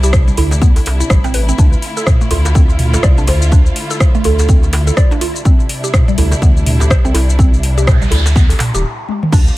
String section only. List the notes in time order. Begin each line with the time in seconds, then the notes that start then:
Already playing: C3 G3 D4 E4
1.58 D3 A3 F4
5.45 C3 G3 D4 E4
9.32 D3 A3 D4 F4